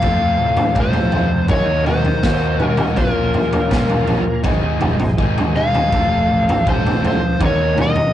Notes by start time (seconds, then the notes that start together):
Already playing: F5
0.01 F2 C3 F3 A3 C4 F4, kick, floor tom
0.05 A4 C5 F5 A5
0.19 F3 A3 C4 F4
0.38 A2
0.57 floor tom
0.75 F2 C3 F3 A3 C4 F4, kick, mid tom
0.80 C5
0.93 floor tom
1.12 F2 F3 A3 C4 F4, floor tom
1.30 muted overdriven electric guitar stroke
1.48 D#2 D#3 A#3 D#4 F#4 A#4 C#5 D#5 F#5, kick, floor tom
1.52 A#5
1.66 A#3 D#4 F#4
1.85 D#3 A#3 D#4 F#4 C5, floor tom, mid tom
2.05 muted overdriven electric guitar stroke, floor tom
2.22 D#2 D#3 A#3 D#4 F#4, kick, snare
2.59 D#3 A#3 D#4 F#4, mid tom
2.66 A#4
2.77 A#3 D#4 F#4, floor tom, mid tom
2.94 A#1 A#2 F3 A#3 C#4 A#4 C#5 F5, kick, floor tom
2.99 F4
3.15 A#3 C#4 F4
3.34 A#2, floor tom
3.53 floor tom
3.71 A#2 F3 A#3 C#4 F4, kick, snare, mid tom
3.90 floor tom
4.06 A#1 F3 A#3 C#4 F4, floor tom
4.25 muted overdriven electric guitar stroke
4.43 G#1 G#2 D#3 G#3 C4 D#4 G#4 C5 D#5 G#5, kick, floor tom
4.61 G#3 C4 D#4 G#4
4.80 F1 G#3 C4 D#4 G#4, floor tom, mid tom
4.99 G#1, muted overdriven electric guitar stroke, floor tom
5.17 G#2 D#3 G#3 C4 D#4 G#4, kick
5.38 floor tom
5.54 G#3 C4 D#4 G#4 F5, mid tom
5.72 G#3 C4 D#4 G#4, floor tom, mid tom
5.90 F1 F3 A3 C4 F4 A4 F5 A5, kick, floor tom
6.09 C4 F4 A4
6.28 A1
6.49 floor tom
6.64 F3 A3 C4 F4 A4, kick, mid tom
6.69 C5
6.87 floor tom
7.02 C#2 A3 C4 F4 A4, floor tom
7.07 C5
7.21 muted overdriven electric guitar stroke
7.39 D#2 D#3 A#3 D#4 F#4 A#4 D#5 F#5 A#5, kick, floor tom
7.45 C#5
7.58 D#4 F#4 A#4
7.75 A#3 D#4 F#4 A#4, floor tom, mid tom
7.81 D#5
7.96 muted overdriven electric guitar stroke, floor tom